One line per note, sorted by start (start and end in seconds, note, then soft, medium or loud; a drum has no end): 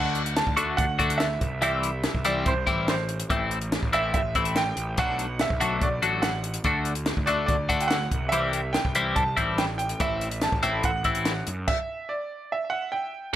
0.00 0.41 D2 medium
0.00 0.21 D3 medium
0.00 0.21 A3 medium
0.00 0.22 D4 medium
0.00 0.22 F#4 medium
0.00 0.37 F#5 medium
0.15 closed hi-hat soft
0.26 closed hi-hat medium
0.36 0.80 A5 medium
0.36 snare medium
0.36 closed hi-hat medium
0.47 0.75 D2 medium
0.47 kick medium
0.57 0.85 D3 medium
0.57 0.85 A3 medium
0.57 0.85 D4 medium
0.57 0.84 F#4 medium
0.57 closed hi-hat medium
0.77 0.97 D2 medium
0.77 1.21 F#5 medium
0.77 kick medium
0.77 closed hi-hat medium
0.99 1.37 D2 medium
0.99 1.27 D3 medium
0.99 1.27 A3 medium
0.99 1.27 D4 medium
0.99 1.26 F#4 medium
0.99 kick medium
0.99 closed hi-hat medium
1.10 closed hi-hat medium
1.18 1.58 E5 medium
1.18 snare loud
1.18 closed hi-hat medium
1.41 2.06 C2 medium
1.41 kick medium
1.41 closed hi-hat medium
1.62 1.89 E3 medium
1.62 1.90 G3 medium
1.62 1.90 C4 medium
1.62 1.90 E4 medium
1.62 2.27 E5 medium
1.62 closed hi-hat medium
1.83 closed hi-hat medium
2.04 snare medium
2.04 closed hi-hat medium
2.15 2.42 C2 medium
2.15 kick medium
2.25 2.53 E3 medium
2.25 2.53 G3 medium
2.25 2.53 C4 medium
2.25 2.52 E4 medium
2.25 2.47 D5 medium
2.25 closed hi-hat medium
2.46 2.65 C2 medium
2.46 2.88 C5 medium
2.46 kick loud
2.46 closed hi-hat medium
2.67 3.23 A1 medium
2.67 2.95 E3 medium
2.67 2.95 G3 medium
2.67 2.95 C4 medium
2.67 2.94 E4 medium
2.67 kick medium
2.67 closed hi-hat soft
2.88 3.18 C5 medium
2.88 snare medium
2.88 closed hi-hat soft
3.09 closed hi-hat soft
3.20 closed hi-hat medium
3.30 3.76 A1 medium
3.30 3.57 E3 medium
3.30 3.58 A3 medium
3.30 3.58 C4 medium
3.30 3.58 E4 medium
3.30 kick loud
3.30 closed hi-hat medium
3.51 closed hi-hat soft
3.61 closed hi-hat medium
3.72 snare medium
3.72 closed hi-hat medium
3.83 4.10 A1 medium
3.83 kick medium
3.93 4.21 E3 medium
3.93 4.21 A3 medium
3.93 4.21 C4 medium
3.93 4.20 E4 medium
3.93 4.12 E5 medium
3.93 closed hi-hat medium
4.14 4.33 A1 medium
4.14 4.57 E5 medium
4.14 kick loud
4.14 closed hi-hat medium
4.35 4.72 A1 medium
4.35 4.63 E3 medium
4.35 4.63 A3 medium
4.35 4.63 C4 medium
4.35 4.63 E4 medium
4.35 kick medium
4.35 closed hi-hat medium
4.45 closed hi-hat medium
4.56 4.95 G5 loud
4.56 snare medium
4.56 closed hi-hat medium
4.77 4.95 A1 medium
4.77 closed hi-hat medium
4.98 5.44 B1 medium
4.98 5.25 F#3 medium
4.98 5.26 A3 medium
4.98 5.25 D4 medium
4.98 5.26 F#4 medium
4.98 5.42 F#5 loud
4.98 kick medium
4.98 closed hi-hat medium
5.19 closed hi-hat medium
5.39 5.84 E5 medium
5.39 snare medium
5.39 closed hi-hat medium
5.50 5.78 B1 medium
5.50 kick medium
5.60 5.88 F#3 medium
5.60 5.88 A3 medium
5.60 5.88 D4 medium
5.60 5.88 F#4 medium
5.60 closed hi-hat medium
5.81 6.00 B1 medium
5.81 6.25 D5 medium
5.81 kick medium
5.81 closed hi-hat medium
6.02 6.58 A1 medium
6.02 6.30 F#3 medium
6.02 6.30 A3 medium
6.02 6.30 D4 medium
6.02 6.30 F#4 medium
6.02 closed hi-hat medium
6.22 6.52 F#5 medium
6.22 snare loud
6.22 closed hi-hat medium
6.44 closed hi-hat medium
6.54 closed hi-hat medium
6.64 7.11 D2 medium
6.64 6.92 D3 medium
6.64 6.93 A3 medium
6.64 6.93 D4 medium
6.64 6.93 F#4 medium
6.64 kick medium
6.64 closed hi-hat medium
6.85 closed hi-hat soft
6.95 closed hi-hat medium
7.06 snare loud
7.06 closed hi-hat medium
7.17 7.45 D2 medium
7.17 kick medium
7.26 7.56 D3 medium
7.26 7.56 A3 medium
7.26 7.55 D4 medium
7.26 7.55 F#4 medium
7.26 7.45 D5 medium
7.26 closed hi-hat soft
7.46 7.67 D2 medium
7.46 7.80 D5 medium
7.46 kick loud
7.46 closed hi-hat medium
7.69 8.07 D2 medium
7.69 7.97 D3 medium
7.69 7.97 A3 medium
7.69 7.97 D4 medium
7.69 7.97 F#4 medium
7.69 kick medium
7.69 closed hi-hat medium
7.80 7.90 G5 medium
7.80 closed hi-hat medium
7.88 8.33 F#5 medium
7.88 snare loud
7.88 closed hi-hat medium
8.12 8.76 C2 medium
8.12 kick medium
8.12 closed hi-hat medium
8.29 8.60 E3 medium
8.29 8.60 G3 medium
8.29 8.60 C4 medium
8.29 8.74 E5 medium
8.29 closed hi-hat medium
8.33 8.60 E4 medium
8.53 closed hi-hat medium
8.73 9.13 G5 medium
8.73 snare medium
8.73 closed hi-hat medium
8.85 9.13 C2 medium
8.85 kick medium
8.95 9.23 E3 medium
8.95 9.23 G3 medium
8.95 9.23 C4 medium
8.95 9.23 E4 medium
8.95 closed hi-hat medium
9.16 9.35 C2 medium
9.16 9.55 A5 loud
9.16 kick medium
9.16 closed hi-hat medium
9.37 9.93 A1 medium
9.37 9.65 E3 medium
9.37 9.65 G3 medium
9.37 9.65 C4 medium
9.37 9.64 E4 medium
9.37 kick medium
9.37 closed hi-hat medium
9.58 9.63 G5 medium
9.58 snare loud
9.58 closed hi-hat medium
9.78 10.00 G5 medium
9.78 closed hi-hat medium
9.89 closed hi-hat medium
10.00 10.46 A1 medium
10.00 10.27 E3 medium
10.00 10.28 A3 medium
10.00 10.28 C4 medium
10.00 10.28 E4 medium
10.00 10.44 E5 medium
10.00 kick loud
10.00 closed hi-hat medium
10.21 closed hi-hat soft
10.31 closed hi-hat medium
10.41 10.86 A5 medium
10.41 snare medium
10.41 closed hi-hat medium
10.52 10.80 A1 medium
10.52 kick medium
10.63 10.91 E3 medium
10.63 10.91 A3 medium
10.63 10.90 C4 medium
10.63 10.90 E4 medium
10.63 closed hi-hat medium
10.83 11.02 A1 medium
10.83 11.43 F#5 medium
10.83 kick loud
10.83 closed hi-hat medium
11.04 11.42 A1 medium
11.04 11.33 E3 medium
11.04 11.33 A3 medium
11.04 11.32 C4 medium
11.04 11.32 E4 medium
11.04 kick medium
11.04 closed hi-hat soft
11.15 closed hi-hat medium
11.25 snare medium
11.25 closed hi-hat medium
11.47 11.66 F#2 medium
11.47 closed hi-hat medium
11.68 12.11 E5 medium
11.68 kick medium
11.68 crash medium
12.09 12.52 D5 medium
12.52 13.10 E5 medium
12.70 12.92 F#5 medium
12.92 13.35 G5 medium